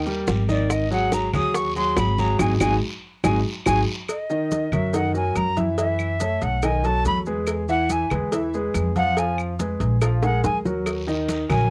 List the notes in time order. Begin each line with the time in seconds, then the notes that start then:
Already playing: D#2
0.06 G3 G4 A#4, high bongo, high conga, maracas
0.27 G#1, high bongo, low bongo, high conga, short guiro, maracas
0.48 D#3 D#4 D5 D#5, high bongo, high conga, short guiro, maracas
0.70 D#5, high bongo, high conga, long guiro, claves, maracas
0.91 F#3 F#4 G#4 F#5, high conga, maracas
1.12 A#5, high bongo, high conga, short guiro, maracas
1.33 D#2 F#3 F#4 G#4 D#6, high conga, low conga, short guiro, claves, maracas
1.54 C#6, high bongo, high conga, long guiro, maracas
1.76 F#3 F#4 G#4 C6, high conga, maracas
1.97 G#1 B5, high bongo, low bongo, high conga, short guiro, claves, maracas
2.18 F#3 F#4 G#4 A#5, high conga, short guiro, maracas
2.39 G#1 D#4 F#4 G#4 G#5, low bongo, high conga, long guiro, claves, maracas
2.60 G#1 D#4 F#4 G#4 G#5, low bongo, high conga, long guiro, claves, maracas
3.24 G#1 D#4 F#4 G#4 G#5, low bongo, high conga, long guiro, claves, maracas
3.66 G#1 D#4 F#4 G#4 G#5, low bongo, high conga, long guiro, claves, maracas
4.09 D#5, cowbell, high conga, claves, maracas
4.30 D#3 D#4 D#5, high conga, maracas
4.51 cowbell, high conga, maracas
4.72 F#2 F#3 F#4 A#4 E5, cowbell, high conga, low conga, claves, maracas
4.93 D#3 D#4 D#5 F#5, cowbell, high conga, maracas
5.14 F#3 F#4 A#4 G#5, high conga, maracas
5.36 F#2 A#5, cowbell, high conga, claves, maracas
5.57 E3 E4 E5, cowbell, high conga, maracas
5.78 E3 E4 E5, cowbell, high conga, maracas
5.99 high conga, claves, maracas
6.20 A3 A4 C#5, cowbell, high conga, maracas
6.42 B1 F#5, cowbell, high conga, maracas
6.62 D#3 D#4 D#5 G#5, cowbell, high conga, claves, maracas
6.84 F#3 F#4 A4 A5, cowbell, high conga, maracas
7.05 E2 B5, cowbell, high conga, maracas
7.26 G#3 G#4 B4, maracas
7.47 cowbell, high conga, claves, maracas
7.69 E3 E4 E5 F#5, high conga, maracas
7.90 G#5, cowbell, high conga, maracas
8.11 E2 G#3 G#4 B4, cowbell, high conga, low conga, claves, maracas
8.32 E3 E4 E5, cowbell, high conga, maracas
8.54 G#3 G#4 B4, high conga, maracas
8.74 F2, cowbell, high conga, claves, maracas
8.96 F3 F4 F5 F#5, cowbell, high conga, maracas
9.17 F3 F4 F5 G#5, cowbell, high conga, maracas
9.38 high conga, claves, maracas
9.59 G#3 G#4 B4, cowbell, high conga, maracas
9.80 A#1, cowbell, high conga, maracas
10.01 F3 F4 F5, cowbell, high conga, claves, maracas
10.22 G#3 G#4 A#4 F#5, cowbell, high bongo, high conga, maracas
10.44 D#2 G#5, cowbell, high bongo, high conga, maracas
10.65 F#3 F#4 A#4, low bongo, high conga, maracas
10.86 cowbell, high conga, long guiro, claves, maracas
11.07 D#3 D#4 D#5, high conga, maracas
11.29 cowbell, high conga, short guiro, maracas
11.49 A#1 F#3 F#4 A#4 G#5, cowbell, high conga, low conga, short guiro, claves, maracas